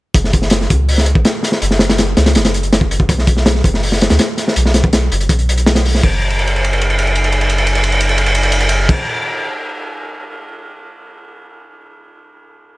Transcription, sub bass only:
0.14 0.68 F#1 loud
0.70 1.15 C#2 medium
1.15 1.24 A1 loud
1.62 2.16 F#1 loud
2.17 2.37 C#2 medium
2.36 3.08 F#1 loud
3.09 3.63 B1 loud
3.64 4.09 F#1 medium
4.10 4.19 D2 loud
4.56 5.10 B1 loud
5.12 5.31 F#1 medium
5.29 6.02 B1 loud
6.03 8.92 F#1 loud

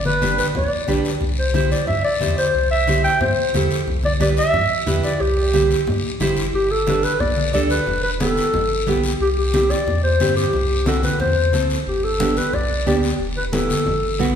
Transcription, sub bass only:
0.00 0.42 G1 loud
0.55 0.68 D2 medium
0.88 1.01 B1 medium
1.21 1.75 C2 loud
1.88 2.01 G2 medium
2.21 2.34 E2 medium
2.54 3.08 C2 loud
3.21 3.34 G2 medium
3.54 3.68 E2 medium
3.88 4.41 C2 loud
4.54 4.67 G2 loud
4.87 5.01 E2 medium
5.21 5.74 C2 loud
5.87 6.00 G2 loud
6.20 6.35 A1 medium
6.37 6.52 G1 medium
6.53 7.07 G1 loud
7.20 7.55 B1 medium
7.53 7.80 D2 medium
7.87 8.40 E1 loud
8.54 8.89 G1 medium
8.87 9.14 B1 medium
9.21 9.74 C2 loud
9.87 10.22 E2 medium
10.20 10.47 G2 medium
10.53 11.07 C2 loud
11.20 11.55 E2 medium
11.53 11.80 D2 medium
11.87 12.40 G1 medium
12.53 12.88 B1 medium
12.86 13.13 D2 medium
13.19 13.73 E1 medium
13.86 14.21 G1 medium
14.19 14.35 B1 medium

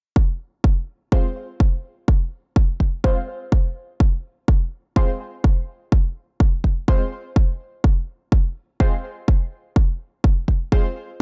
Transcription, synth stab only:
1.12 1.26 G#3 medium
1.12 1.26 C4 medium
1.12 1.26 F4 medium
1.12 1.26 C5 medium
3.04 3.18 G#3 medium
3.04 3.18 C4 medium
3.04 3.18 F4 medium
3.04 3.18 C5 medium
4.96 5.10 G#3 medium
4.96 5.10 C4 medium
4.96 5.10 F4 medium
4.96 5.10 C5 medium
6.88 7.02 G#3 medium
6.88 7.02 C4 medium
6.88 7.02 F4 medium
6.88 7.02 C5 medium
8.80 8.94 G#3 medium
8.80 8.94 C4 medium
8.80 8.94 F4 medium
8.80 8.94 C5 medium
10.72 10.86 G#3 medium
10.72 10.86 C4 medium
10.72 10.86 F4 medium
10.72 10.86 C5 medium

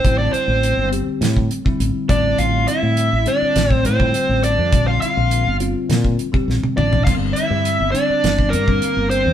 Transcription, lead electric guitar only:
0.00 0.18 C5 medium
0.18 0.32 D5 medium
0.33 0.88 C5 medium
2.10 2.39 D5 medium
2.39 2.66 F5 medium
2.68 3.28 E5 medium
3.28 3.74 D5 medium
3.74 3.86 C5 medium
3.86 4.44 C5 medium
4.44 4.87 D5 medium
4.88 5.00 F5 medium
5.01 5.56 F5 medium
6.77 7.04 D5 medium
7.04 7.13 F5 medium
7.33 7.91 E5 medium
7.92 8.53 D5 medium
8.50 9.10 A#4 medium
9.10 9.33 C5 medium

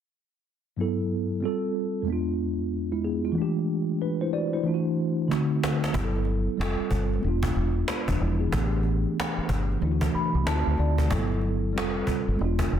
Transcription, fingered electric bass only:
5.95 6.47 G1 medium
6.59 6.75 F1 medium
6.80 muted fingered electric bass stroke soft
6.91 7.17 G1 medium
7.24 7.50 E1 medium
7.56 7.82 E1 medium
8.08 8.18 E1 medium
8.21 8.47 E1 medium
8.53 9.05 A1 medium
9.38 muted fingered electric bass stroke soft
9.49 9.75 G1 medium
9.82 10.08 D2 medium
10.15 muted fingered electric bass stroke soft
10.35 10.44 C2 medium
10.47 10.63 D2 medium
10.67 10.76 D2 medium
10.79 11.12 D2 medium
11.11 11.76 G1 medium
11.76 12.02 F1 medium
12.07 muted fingered electric bass stroke soft
12.28 12.38 G1 medium
12.40 12.66 E1 medium
12.73 12.80 E1 medium

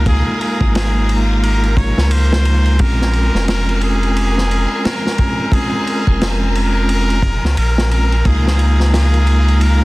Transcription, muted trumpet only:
0.08 0.39 G#4 loud
0.41 0.73 G#4 medium
0.76 1.15 G#4 medium
1.43 1.79 A#4 medium
1.77 2.13 C#5 medium
2.12 2.83 C5 medium
2.81 3.48 A#4 loud
3.49 3.80 A#4 loud
3.83 4.87 G#4 loud
4.85 5.54 A#4 medium
5.53 6.29 G#4 loud
6.56 7.53 A#4 loud
7.59 7.89 A#4 medium
7.92 8.28 A#4 medium
8.27 8.94 G#4 loud
8.95 9.64 G#4 loud
9.62 9.84 A#4 loud

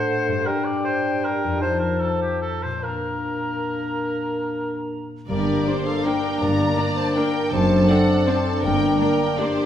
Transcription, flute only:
0.00 0.45 F#5 soft
0.46 1.63 G5 soft
1.61 2.53 A5 soft
2.83 5.07 A#5 soft
5.29 5.88 G4 medium
5.87 6.05 A4 soft
6.05 6.43 A#4 soft
6.42 6.98 D5 medium
6.97 7.18 C5 soft
7.17 7.51 A#4 soft
7.52 7.90 C5 medium
7.89 8.29 A4 soft
8.27 8.63 C5 soft
8.64 8.99 A#4 medium
9.00 9.40 A#4 soft
9.39 9.66 G4 medium

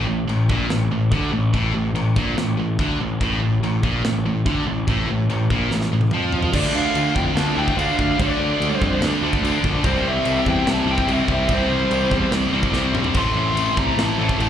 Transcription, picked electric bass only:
0.07 0.26 A1 medium
0.27 0.47 A1 medium
0.50 0.69 A#1 loud
0.69 0.89 A1 medium
0.91 1.10 A1 medium
1.12 1.31 D2 medium
1.32 1.52 A1 medium
1.54 1.73 A1 loud
1.74 1.94 A1 medium
1.94 2.14 A1 medium
2.16 2.36 A#1 loud
2.37 2.57 A1 medium
2.58 2.77 A1 medium
2.79 2.98 D2 loud
3.00 3.19 A1 medium
3.21 3.40 A1 medium
3.41 3.60 A1 medium
3.61 3.81 A1 medium
3.83 4.03 A#1 loud
4.05 4.24 A1 medium
4.25 4.44 A1 medium
4.46 4.65 D2 loud
4.66 4.86 A1 medium
4.88 5.07 A1 medium
5.08 5.28 A1 medium
5.29 5.48 A1 medium
5.50 5.69 A#1 medium
5.71 5.90 A1 medium
5.91 6.11 A1 medium
6.11 6.50 F2 medium
6.53 6.65 D2 loud
6.75 6.88 D2 medium
6.95 7.08 D2 medium
7.16 7.28 F2 loud
7.36 7.48 D2 loud
7.57 7.69 D2 medium
7.77 7.90 D2 loud
7.99 8.11 D2 medium
8.20 8.32 D2 loud
8.40 8.52 D2 medium
8.60 8.73 D2 medium
8.82 8.94 F2 loud
9.01 9.13 D2 loud
9.21 9.34 D2 medium
9.43 9.56 D2 medium
9.63 9.76 A#1 medium
9.84 9.97 C2 loud
10.04 10.17 C2 medium
10.26 10.38 C2 medium
10.46 10.59 E2 medium
10.67 10.79 C2 loud
10.86 10.99 C2 medium
11.08 11.21 C2 loud
11.28 11.41 C2 medium
11.49 11.62 C2 loud
11.68 11.82 C2 medium
11.91 12.04 C2 medium
12.11 12.24 E2 loud
12.32 12.45 C2 medium
12.53 12.66 C2 medium
12.73 12.85 C2 loud
12.92 13.06 A#1 medium
13.14 13.27 A1 loud
13.34 13.47 A1 medium
13.54 13.67 A1 medium
13.78 13.90 C2 loud
13.96 14.09 A1 loud
14.18 14.31 A1 loud
14.38 14.49 A1 loud

